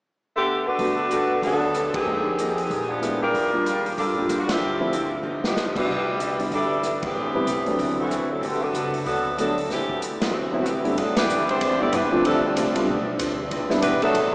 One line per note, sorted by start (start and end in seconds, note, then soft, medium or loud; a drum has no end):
0.35 0.65 D3 medium
0.35 0.65 A3 medium
0.35 0.65 B3 medium
0.35 0.65 G4 medium
0.68 1.43 A3 medium
0.68 1.44 D4 medium
0.68 1.44 F#4 medium
0.68 1.43 B4 medium
0.78 1.39 G1 medium
0.78 0.99 G3 medium
0.78 1.67 A3 medium
0.78 1.00 B3 medium
0.78 1.67 B3 soft
0.78 1.68 D4 soft
0.78 1.00 F#4 medium
0.78 1.68 F#4 medium
0.78 1.01 A4 soft
0.78 kick soft
0.78 open hi-hat soft
1.10 1.31 G3 medium
1.10 1.32 B3 medium
1.10 1.32 F#4 medium
1.10 1.32 A4 medium
1.10 closed hi-hat soft
1.42 1.90 D2 medium
1.42 1.91 F#3 medium
1.42 1.63 G3 soft
1.42 1.64 B3 soft
1.42 1.91 B3 medium
1.42 1.91 D4 medium
1.42 1.65 F#4 soft
1.42 1.91 A4 medium
1.42 1.65 A4 soft
1.42 kick soft
1.42 open hi-hat soft
1.74 1.95 G3 medium
1.74 1.95 B3 medium
1.74 1.96 F#4 medium
1.74 1.96 A4 medium
1.74 cross-stick medium
1.74 closed hi-hat soft
1.93 2.71 D#3 medium
1.93 2.71 C4 medium
1.93 2.88 G4 medium
1.93 2.90 G#4 medium
1.93 muted upright bass stroke soft
1.93 kick medium
1.93 ride medium
2.06 2.66 F2 medium
2.06 2.27 F3 soft
2.06 2.23 G#3 soft
2.06 2.24 A#3 soft
2.06 2.27 A#3 soft
2.06 2.24 D#4 soft
2.06 2.28 D#4 medium
2.06 2.24 G4 soft
2.06 2.28 G#4 medium
2.39 2.59 F3 medium
2.39 2.60 A#3 medium
2.39 2.60 D#4 medium
2.39 2.60 G#4 medium
2.39 closed hi-hat medium
2.58 open hi-hat soft
2.70 3.30 A#1 medium
2.70 2.91 A#2 soft
2.70 2.91 G#3 soft
2.70 2.92 B3 medium
2.70 2.92 D4 medium
2.70 kick soft
2.70 open hi-hat soft
2.90 3.21 F3 medium
2.90 3.21 B3 medium
2.90 3.21 D4 medium
2.90 3.21 G4 medium
3.01 3.23 A#2 medium
3.01 3.33 G#3 soft
3.01 3.23 G#3 medium
3.01 3.33 B3 soft
3.01 3.24 B3 medium
3.01 3.33 D4 soft
3.01 3.24 D4 medium
3.01 3.34 E4 medium
3.01 cross-stick medium
3.01 closed hi-hat medium
3.22 3.94 G3 medium
3.22 3.94 D4 medium
3.22 3.94 F4 medium
3.22 3.94 A#4 medium
3.34 3.94 D#2 medium
3.34 3.55 D#3 soft
3.34 3.55 G3 soft
3.34 3.55 D4 medium
3.34 3.56 F4 medium
3.34 kick soft
3.34 open hi-hat soft
3.53 3.64 G3 medium
3.53 3.64 A#3 medium
3.53 3.65 D4 soft
3.53 3.65 F4 medium
3.65 3.86 D#3 medium
3.65 3.86 G3 medium
3.65 3.87 D4 medium
3.65 3.87 F4 medium
3.65 closed hi-hat medium
3.86 open hi-hat soft
3.97 4.27 G2 medium
3.97 4.18 D#3 soft
3.97 4.18 G3 soft
3.97 4.41 G3 medium
3.97 4.19 D4 soft
3.97 4.41 D4 medium
3.97 4.41 F4 medium
3.97 4.19 F4 soft
3.97 4.41 A4 medium
3.97 kick soft
3.97 open hi-hat soft
4.17 4.58 G3 medium
4.17 4.59 A#3 medium
4.17 4.59 D4 medium
4.17 4.59 F4 medium
4.28 4.58 D#2 medium
4.28 4.50 D#3 medium
4.28 4.50 G3 medium
4.28 4.50 D4 medium
4.28 4.51 F4 medium
4.28 cross-stick medium
4.28 closed hi-hat medium
4.40 4.48 F#4 medium
4.49 5.16 F3 medium
4.49 5.16 C4 medium
4.49 5.17 E4 medium
4.49 5.17 G4 medium
4.49 snare medium
4.49 ride medium
4.61 5.21 D2 medium
4.61 4.81 D3 soft
4.61 4.82 F3 soft
4.61 4.82 C4 soft
4.61 4.83 E4 soft
4.80 4.91 F3 medium
4.80 4.91 A3 medium
4.80 4.91 C4 medium
4.80 4.92 E4 medium
4.92 5.13 D3 medium
4.92 5.13 F3 medium
4.92 5.14 C4 medium
4.92 5.14 E4 medium
4.92 closed hi-hat soft
5.23 5.84 G1 medium
5.23 5.44 G2 medium
5.23 5.45 F3 medium
5.23 5.45 B3 medium
5.23 5.46 D#4 medium
5.44 5.74 F3 medium
5.44 5.75 B3 medium
5.44 5.75 D#4 medium
5.44 5.75 G4 medium
5.44 snare medium
5.56 5.76 G2 medium
5.56 5.77 F3 medium
5.56 5.77 B3 medium
5.56 5.77 D#4 medium
5.56 snare medium
5.76 5.87 G3 medium
5.76 6.49 G3 medium
5.76 5.87 B3 medium
5.76 5.87 D4 medium
5.76 6.49 D4 medium
5.76 6.48 E4 medium
5.76 5.87 F#4 medium
5.76 6.49 B4 medium
5.76 kick medium
5.76 crash medium
5.87 6.48 C2 medium
5.87 6.08 C3 soft
5.87 6.09 E3 soft
5.87 6.09 B3 medium
5.87 6.10 D4 soft
5.87 kick soft
6.19 6.40 C3 medium
6.19 6.41 E3 medium
6.19 6.41 B3 medium
6.19 6.41 D4 medium
6.19 closed hi-hat medium
6.39 6.50 G3 medium
6.39 6.50 B3 soft
6.39 6.50 D4 soft
6.39 6.51 E4 medium
6.39 open hi-hat soft
6.51 7.12 G1 medium
6.51 6.72 C3 soft
6.51 6.72 E3 soft
6.51 7.01 G3 medium
6.51 6.73 B3 soft
6.51 6.73 D4 soft
6.51 7.00 D4 medium
6.51 7.01 E4 medium
6.51 7.00 A4 medium
6.51 kick soft
6.51 open hi-hat soft
6.83 7.04 C3 medium
6.83 7.05 E3 medium
6.83 7.05 B3 medium
6.83 7.05 D4 medium
6.83 cross-stick medium
6.83 closed hi-hat medium
7.03 7.99 E3 medium
7.03 7.99 B3 medium
7.03 7.99 C4 medium
7.03 7.80 G4 medium
7.03 kick medium
7.03 ride medium
7.13 7.44 A1 medium
7.13 7.36 A3 soft
7.13 7.37 C4 soft
7.18 7.37 G4 medium
7.18 7.38 B4 soft
7.35 7.46 G3 medium
7.35 7.46 B3 medium
7.35 7.46 C4 medium
7.35 7.46 E4 medium
7.45 7.76 C2 medium
7.45 7.68 A3 medium
7.45 7.68 C4 medium
7.45 7.68 G4 medium
7.45 closed hi-hat medium
7.50 7.69 B4 medium
7.66 8.09 C3 medium
7.66 8.08 F#3 medium
7.66 8.08 A3 medium
7.66 8.09 D4 medium
7.66 open hi-hat soft
7.79 8.08 D2 medium
7.79 7.99 D3 medium
7.79 8.00 F#3 soft
7.79 8.00 C4 medium
7.79 8.01 E4 medium
7.79 kick soft
7.79 open hi-hat soft
8.00 8.29 E3 medium
8.00 8.29 A3 medium
8.00 8.29 C4 medium
8.00 8.29 F#4 medium
8.09 8.39 D2 medium
8.09 8.31 D3 medium
8.09 8.31 F#3 medium
8.09 8.31 C4 medium
8.09 8.32 E4 medium
8.09 cross-stick medium
8.09 closed hi-hat soft
8.31 8.43 F#3 medium
8.31 8.43 C4 medium
8.31 8.43 E4 medium
8.31 8.43 A4 medium
8.41 8.72 G1 medium
8.41 8.62 G3 soft
8.41 8.63 B3 soft
8.41 8.64 F#4 medium
8.41 8.64 A4 medium
8.41 kick soft
8.41 open hi-hat soft
8.45 8.63 D3 medium
8.45 8.61 A3 medium
8.45 8.63 B3 medium
8.45 8.63 G4 medium
8.62 9.06 A3 medium
8.62 9.06 D4 medium
8.62 9.07 F#4 medium
8.62 9.06 B4 loud
8.73 9.03 F#1 medium
8.73 8.95 G3 medium
8.73 8.95 B3 medium
8.73 8.96 F#4 medium
8.73 8.96 A4 medium
8.73 closed hi-hat medium
8.94 open hi-hat soft
9.05 9.67 D2 medium
9.05 9.36 F#3 medium
9.05 9.26 G3 soft
9.05 9.27 B3 soft
9.05 9.36 B3 medium
9.05 9.36 D4 medium
9.05 9.27 F#4 medium
9.05 9.36 A4 medium
9.05 9.28 A4 medium
9.05 kick soft
9.05 open hi-hat soft
9.38 9.56 F#3 medium
9.38 9.68 F#3 medium
9.38 9.58 G3 medium
9.38 9.56 A3 medium
9.38 9.59 B3 medium
9.38 9.68 B3 medium
9.38 9.56 B3 soft
9.38 9.68 D4 medium
9.38 9.56 D4 medium
9.38 9.59 F#4 medium
9.38 9.68 A4 medium
9.38 9.60 A4 medium
9.38 cross-stick medium
9.38 closed hi-hat soft
9.58 open hi-hat soft
9.69 10.30 A1 medium
9.69 9.90 A2 medium
9.69 10.01 E3 medium
9.69 9.91 G3 medium
9.69 10.01 A3 medium
9.69 9.91 C4 soft
9.69 10.01 C4 medium
9.69 9.92 E4 medium
9.69 10.01 G4 medium
9.69 kick soft
9.69 snare soft
9.69 open hi-hat soft
9.89 kick medium
10.01 10.22 A2 medium
10.01 10.22 G3 medium
10.01 10.23 C4 medium
10.01 10.23 E4 medium
10.01 closed hi-hat medium
10.21 10.64 A2 medium
10.21 10.63 C3 medium
10.21 10.65 E3 medium
10.21 10.81 F#3 medium
10.21 10.66 A3 medium
10.21 10.65 C4 medium
10.21 10.61 F#4 medium
10.21 snare medium
10.21 ride medium
10.32 10.93 D2 medium
10.32 10.54 D3 soft
10.32 10.54 C4 soft
10.32 10.55 F#4 soft
10.32 10.55 B4 soft
10.52 10.64 F#3 medium
10.52 10.64 B3 medium
10.52 10.64 C4 medium
10.52 10.64 E4 medium
10.62 10.97 A2 medium
10.62 10.97 C3 medium
10.62 10.85 D3 medium
10.62 10.96 G3 medium
10.62 10.86 C4 medium
10.62 10.66 F#4 medium
10.62 cross-stick medium
10.62 closed hi-hat medium
10.66 10.98 E3 medium
10.66 10.98 A3 medium
10.66 10.98 C4 medium
10.66 10.86 F#4 medium
10.66 10.98 G4 medium
10.66 10.86 B4 medium
10.84 10.95 G2 medium
10.84 10.95 A3 soft
10.84 10.95 B3 medium
10.84 10.96 D4 soft
10.84 10.96 E4 medium
10.84 open hi-hat soft
10.97 11.28 G2 medium
10.97 11.18 G2 soft
10.97 11.18 E3 soft
10.97 11.17 F#3 medium
10.97 11.16 A3 medium
10.97 11.17 B3 medium
10.97 11.19 B3 medium
10.97 11.16 D4 medium
10.97 11.19 D4 medium
10.97 11.17 A4 medium
10.97 kick soft
10.97 ride medium
11.17 11.46 D3 medium
11.17 11.46 E3 medium
11.17 11.46 G3 medium
11.17 11.46 B3 medium
11.17 11.46 D4 medium
11.17 11.46 E4 medium
11.17 11.46 B4 loud
11.17 snare medium
11.17 ride medium
11.29 11.39 F#2 medium
11.29 11.49 G2 medium
11.29 11.50 E3 medium
11.29 11.50 B3 medium
11.29 11.50 D4 medium
11.29 hi-hat pedal medium
11.39 11.49 E2 medium
11.48 11.59 D2 medium
11.48 11.80 D3 medium
11.48 11.79 E3 medium
11.48 11.81 G3 medium
11.48 11.80 C4 medium
11.48 11.81 D4 medium
11.48 11.80 E4 medium
11.48 11.81 C5 loud
11.48 ride soft
11.61 11.91 E2 medium
11.61 11.81 G2 soft
11.61 11.82 E3 medium
11.61 11.82 B3 medium
11.61 11.83 D4 medium
11.61 kick soft
11.61 ride medium
11.80 11.92 E3 medium
11.80 11.91 G3 medium
11.80 11.92 A3 medium
11.80 11.92 B3 medium
11.80 11.93 B3 medium
11.80 11.93 D4 medium
11.80 11.92 D4 medium
11.80 11.93 E4 medium
11.80 11.92 E4 medium
11.80 11.93 G4 medium
11.80 11.93 D5 medium
11.92 12.02 G2 medium
11.92 12.13 G2 medium
11.92 12.25 D3 medium
11.92 12.13 E3 medium
11.92 12.24 E3 medium
11.92 12.25 G3 medium
11.92 12.25 B3 medium
11.92 12.14 B3 medium
11.92 12.14 D4 medium
11.92 12.25 D4 medium
11.92 12.25 E4 medium
11.92 12.25 B4 medium
11.92 kick soft
11.92 hi-hat pedal medium
11.92 ride medium
12.02 12.12 E2 medium
12.11 12.23 D2 medium
12.11 12.22 F3 medium
12.11 12.23 A3 medium
12.11 12.23 C4 medium
12.11 12.23 D4 medium
12.11 12.23 F4 medium
12.23 12.55 D2 medium
12.23 12.43 C3 medium
12.23 12.44 D3 medium
12.23 12.43 F3 medium
12.23 12.45 A3 soft
12.23 12.43 A3 medium
12.23 12.45 C4 soft
12.23 12.43 C4 medium
12.23 12.43 D4 medium
12.23 12.46 F4 soft
12.23 12.43 A4 medium
12.23 kick soft
12.23 ride medium
12.45 13.07 A2 medium
12.45 12.88 C3 medium
12.45 13.07 F3 medium
12.45 13.07 G3 medium
12.45 12.88 C4 medium
12.45 13.07 D4 medium
12.45 13.07 G4 medium
12.55 12.86 C2 medium
12.55 12.76 D3 medium
12.55 12.76 A3 medium
12.55 12.77 C4 medium
12.55 12.77 F4 medium
12.55 kick soft
12.55 hi-hat pedal medium
12.55 ride medium
12.74 12.86 G3 medium
12.74 12.86 A3 medium
12.74 12.86 B3 medium
12.74 12.86 D4 medium
12.74 12.86 F4 medium
12.74 ride medium
12.87 13.18 B1 loud
12.87 13.08 G2 medium
12.87 13.08 F3 medium
12.87 13.09 B3 medium
12.87 13.09 D4 medium
12.87 kick soft
13.19 13.50 D2 loud
13.19 13.39 G2 medium
13.19 13.40 F3 medium
13.19 13.40 B3 medium
13.19 13.40 D4 medium
13.19 kick soft
13.19 hi-hat pedal medium
13.19 ride medium
13.51 13.81 C2 medium
13.51 13.71 C3 medium
13.51 13.72 E3 medium
13.51 13.72 B3 medium
13.51 13.73 D4 medium
13.51 kick soft
13.51 ride medium
13.69 13.81 G3 medium
13.69 13.81 B3 medium
13.69 13.81 C4 medium
13.69 13.81 D4 medium
13.69 13.81 E4 medium
13.69 snare soft
13.82 14.13 B1 medium
13.82 14.03 C3 medium
13.82 14.02 E3 medium
13.82 14.03 E3 medium
13.82 14.02 G3 medium
13.82 14.02 B3 medium
13.82 14.04 B3 medium
13.82 14.02 D4 medium
13.82 14.04 D4 medium
13.82 14.02 E4 medium
13.82 14.02 B4 loud
13.82 kick soft
13.82 hi-hat pedal medium
13.82 ride medium
14.02 14.31 F#3 medium
14.02 14.30 A3 medium
14.02 14.31 B3 medium
14.02 14.31 D4 medium
14.02 14.31 A4 medium
14.02 ride soft
14.14 14.35 A1 medium
14.14 14.35 C3 medium
14.14 14.35 E3 medium
14.14 14.35 B3 medium
14.14 14.35 D4 medium
14.14 kick soft
14.14 ride medium